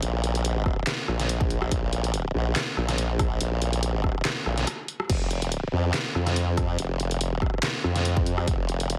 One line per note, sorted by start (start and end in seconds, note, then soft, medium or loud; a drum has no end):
0.03 0.85 A#1 loud
0.03 closed hi-hat medium
0.24 closed hi-hat medium
0.35 closed hi-hat medium
0.45 closed hi-hat medium
0.66 kick medium
0.66 cross-stick medium
0.87 snare loud
0.87 clap medium
0.87 closed hi-hat medium
1.08 1.70 A#1 loud
1.08 cross-stick medium
1.20 snare soft
1.20 closed hi-hat medium
1.29 closed hi-hat medium
1.41 kick loud
1.50 closed hi-hat medium
1.62 cross-stick medium
1.72 2.33 A#1 loud
1.72 kick loud
1.72 closed hi-hat medium
1.93 closed hi-hat medium
2.04 closed hi-hat medium
2.14 closed hi-hat medium
2.35 2.54 A#1 loud
2.56 snare loud
2.56 clap medium
2.56 closed hi-hat medium
2.77 3.39 A#1 loud
2.77 cross-stick medium
2.89 cross-stick medium
2.89 snare soft
2.89 closed hi-hat medium
2.98 closed hi-hat medium
3.19 kick loud
3.19 cross-stick medium
3.19 closed hi-hat medium
3.41 4.23 A#1 loud
3.41 closed hi-hat medium
3.62 closed hi-hat medium
3.73 closed hi-hat medium
3.83 closed hi-hat medium
4.04 kick medium
4.04 cross-stick medium
4.25 snare loud
4.25 clap medium
4.25 closed hi-hat medium
4.46 4.66 A#1 loud
4.46 cross-stick medium
4.58 snare soft
4.58 closed hi-hat medium
4.67 cross-stick medium
4.67 closed hi-hat medium
4.88 closed hi-hat medium
5.00 cross-stick medium
5.10 5.71 F1 loud
5.10 kick loud
5.10 closed hi-hat medium
5.10 crash medium
5.31 closed hi-hat medium
5.42 closed hi-hat medium
5.52 closed hi-hat medium
5.73 5.92 F2 loud
5.94 snare loud
5.94 clap medium
5.94 closed hi-hat medium
6.15 6.77 F2 loud
6.15 cross-stick medium
6.27 cross-stick medium
6.27 snare soft
6.27 closed hi-hat medium
6.36 closed hi-hat medium
6.57 kick loud
6.57 cross-stick medium
6.57 closed hi-hat medium
6.79 7.62 F1 loud
6.79 closed hi-hat medium
7.00 closed hi-hat medium
7.11 closed hi-hat medium
7.21 closed hi-hat medium
7.42 kick medium
7.42 cross-stick medium
7.63 snare loud
7.63 clap loud
7.63 closed hi-hat medium
7.84 8.46 F2 loud
7.84 cross-stick medium
7.96 snare soft
7.96 closed hi-hat medium
8.05 closed hi-hat medium
8.17 kick loud
8.26 closed hi-hat medium
8.38 cross-stick medium
8.48 8.92 F1 loud
8.48 kick loud
8.48 closed hi-hat medium
8.69 closed hi-hat medium
8.80 closed hi-hat medium
8.90 8.98 E1 loud
8.90 closed hi-hat medium